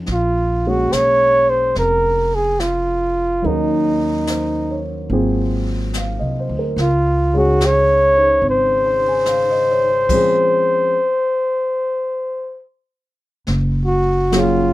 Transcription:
Already playing: A4
0.06 A#1, brush sweep, snare
0.12 F4
0.67 G#3 A#3 C#4 F#4 G#4
0.92 B1 C#5, snare, hi-hat pedal
1.49 C5
1.75 F1 A#4, brush sweep, snare
2.35 G#4
2.60 F4, snare, hi-hat pedal
3.42 D#2 F#3 A#3 C#4 D#4, brush sweep
3.47 D#4 A#4
4.27 C5, snare, hi-hat pedal
4.71 C#5
5.10 G#1 F#3 A#3 C4 F4 G#4, brush sweep
5.94 F5, snare, hi-hat pedal
6.19 C2 D#5
6.39 C5
6.49 D2
6.59 A#4
6.76 C#2 F4, brush sweep, snare
7.33 C#3 G#3 C#4 G#4
7.38 F#4
7.61 snare, hi-hat pedal
7.66 C#5
8.16 D#4 G#4 C5
8.42 G#1, brush sweep
8.49 C5
8.86 C6
9.08 G#5
9.26 F5, snare, hi-hat pedal
9.50 D#5
9.71 C#5
9.91 C5
10.09 F3 G#3 C4 C#4, kick, crash
10.15 G#4
13.47 F#1, brush sweep, snare
13.86 F#4
14.31 F#3 A#3 C#4 F4, snare, hi-hat pedal
14.37 F4 G#4

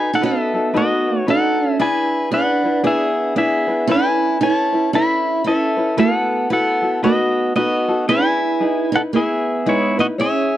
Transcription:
Already playing: D#4 F#4 A4 B4 G#5
0.13 D#4 A4 F#5
0.21 B3 D#4 F#4 A4 B4
0.26 E5
0.54 D#4 F#4 A4
0.74 B3 D#4 F#4 A4 B4 D#5
1.20 C#5
1.26 D#4 F#4 A4 B4 F#5
1.72 E5
1.79 D4 E4 G#4 B4 G#5
2.31 D4 E4 G#4 B4 F#5
2.64 D4 E4 B4
2.83 B3 D4 E4 G#4 B4 E5
3.35 B3 D4 E4 G#4 B4 E5
3.67 D4 E4 B4
3.87 C#4 E4 A4 B4
3.92 B4 G#5
4.41 C#4 E4 A4 B4 C#5 A5
4.73 C#4 E4 B4
4.93 C#4 E4 A4 B4 E5 B5
5.44 C#4 E4 A4 B4 E5
5.77 C#4 E4 B4
5.97 B3 E4 F#4 A4 B4 F#5
6.50 B3 E4 F#4 A4 B4 F#5
6.82 E4 F#4 A4
7.03 B3 D#4 F#4 A4 B4 D#5
7.56 B3 D#4 F#4 A4 B4 D#5
7.88 D#4 F#4 A4
8.08 E4 G#4 B4 G#5
8.60 D#4 E4 G#4 B4
8.92 D#4 E4 B4 F#5
8.97 A4
9.13 B3 E4 G#4 B4 E5
9.66 G#3 D#4 E4 G#4 B4 C#5
9.98 B3 D#4 E4 F#4 B4 D#5
10.18 C#4 E4 G#4 C#5 E5

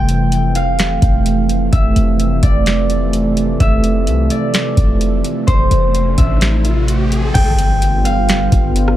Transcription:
Already playing: F1 C3 E3 F3 A3 E5 G5
0.09 closed hi-hat
0.32 closed hi-hat
0.55 F5, closed hi-hat
0.79 snare, closed hi-hat
1.02 F1, kick, closed hi-hat
1.26 closed hi-hat
1.49 closed hi-hat
1.72 F1 E5, kick, closed hi-hat
1.96 F1, closed hi-hat
2.20 closed hi-hat
2.43 F1 D5, kick, closed hi-hat
2.66 snare, closed hi-hat
2.90 closed hi-hat
3.13 closed hi-hat
3.37 closed hi-hat
3.60 F1 E5, kick, closed hi-hat, riser
3.84 closed hi-hat
4.07 C2, closed hi-hat
4.30 D5, closed hi-hat
4.54 snare, closed hi-hat
4.77 F1, kick, closed hi-hat
5.01 closed hi-hat
5.24 closed hi-hat
5.47 F1 C5, kick, closed hi-hat
5.71 F1, closed hi-hat
5.95 closed hi-hat
6.18 A1 E5, kick, closed hi-hat
6.41 snare, closed hi-hat
6.65 closed hi-hat
6.88 closed hi-hat
7.12 closed hi-hat
7.34 G1 D3 G3 B3 F4 G5, kick, closed hi-hat, crash, impact
7.59 closed hi-hat
7.82 closed hi-hat
8.05 F5, closed hi-hat
8.29 snare, closed hi-hat
8.52 G1, kick, closed hi-hat
8.76 closed hi-hat
8.88 cross-stick

